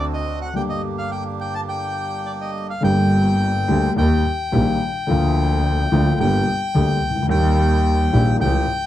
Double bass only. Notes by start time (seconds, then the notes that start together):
Already playing: D2
2.83 G1
3.69 D2
3.96 D#2
4.54 A#1
5.08 D2
5.92 D2
6.19 G1
6.76 D2
7.03 C#2
7.29 D#2
8.13 A#1
8.41 C#2